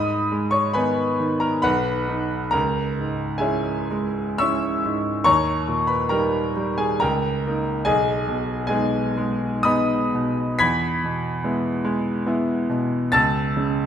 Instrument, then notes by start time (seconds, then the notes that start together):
grand piano
Already playing: G#2 D#5 B5 D#6
0.32 G#3
0.51 C#5 C#6
0.73 D#3 B3 D#4 B4 G#5 B5
1.20 D#3
1.40 A#4 A#5
1.62 B1 B4 F#5 B5
2.09 D#4
2.51 C#2 A#4 A#5
2.99 G#2
3.38 G#3 C#4 G#4 E5 G#5
3.42 E4
3.91 G#3
4.38 G#3 C#4 E4 E5 C#6 E6
4.85 G#2
5.24 D#2 C#5 A#5 C#6
5.68 A#2
5.87 B4 B5
6.09 G3 A#3 D#4 A#4 G5 A#5
6.56 G3
6.78 G#4 G#5
7.00 C#2 A#4 G5 A#5
7.47 A#3 D#4
7.85 B1 G#4 D#5 G#5
8.28 B2
8.67 G#3 B3 D#4 G#4 D#5 G#5
9.18 G#3
9.63 G#3 B3 D#4 D#5 B5 D#6
10.14 B2
10.59 E2 B5 G#6 B6
11.04 B2
11.44 G#3 B3 E4
11.85 G#3
12.27 G#3 B3 E4
12.70 B2
13.12 C#2 A5 E6 A6
13.56 C#3